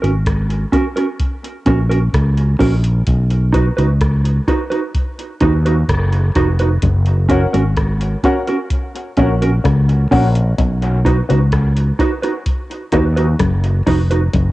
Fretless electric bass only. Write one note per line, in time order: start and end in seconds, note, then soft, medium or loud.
0.03 0.64 G#1 medium
1.67 2.07 A#1 medium
2.14 2.54 C#2 medium
2.61 3.01 A#1 loud
3.08 3.68 B1 loud
3.78 4.39 C#2 medium
5.42 5.83 D#2 medium
5.89 6.30 F#1 medium
6.36 6.77 F1 medium
6.83 7.44 F#1 loud
7.54 8.15 G#1 medium
9.18 9.58 A#1 medium
9.65 10.05 C#2 medium
10.12 10.52 A#1 loud
10.59 11.20 B1 medium
11.31 11.91 C#2 medium
12.93 13.34 D#2 loud
13.40 13.81 F#1 medium
13.87 14.28 F1 medium
14.34 14.52 F#1 loud